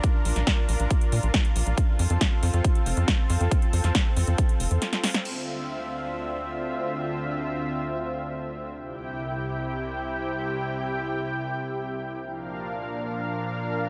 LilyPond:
<<
  \new Staff \with { instrumentName = "Analog synth pad" } { \time 4/4 \key d \minor \tempo 4 = 138 << { <d' bes'>1 | <c' a'>1~ | <c' a'>1 | <d, d c' e''>1~ |
<d, d c' e''>1 | <c, c e' g''>1~ | <c, c e' g''>1 | <bes, f d' f''>1 | } \\ { f'1~ | f'1~ | f'1 | f'1~ |
f'1 | g'1~ | g'1 | bes'1 | } >> }
  \new Staff \with { instrumentName = "Analog synth bass" } { \clef bass \time 4/4 \key d \minor r8 bes,,16 bes,,16 r8 bes,,16 bes,,16 r8 bes,16 bes,,16 r8 bes,,16 bes,,16 | r8 f,16 f,16 r8 f,16 f,16 r8 f,,16 f,16 r8 f,16 f,16 | r8 f,16 f,16 r8 f,16 f,16 r8 f,,16 f,16 r4 | r1 |
r1 | r1 | r1 | r1 | }
  \new DrumStaff \with { instrumentName = "Drums" } \drummode { \time 4/4 <hh bd>8 hho16 <hh sn>16 <hh bd sn>8 hho16 hh16 <hh bd>16 hh16 hho16 hh16 <hh bd sn>16 hh16 hho16 hh16 | <hh bd>8 hho16 hh16 <hh bd sn>8 hho16 hh16 <hh bd>16 hh16 hho16 hh16 <hh bd sn>8 hho16 hh16 | <hh bd>16 hh16 hho16 <hh sn>16 <hh bd sn>8 hho16 hh16 <hh bd>16 hh16 hho16 hh16 <hh sn>16 <hh sn>16 <hho sn>16 <hh sn>16 | cymc4 r4 r4 r4 |
r4 r4 r4 r4 | r4 r4 r4 r4 | r4 r4 r4 r4 | r4 r4 r4 r4 | }
>>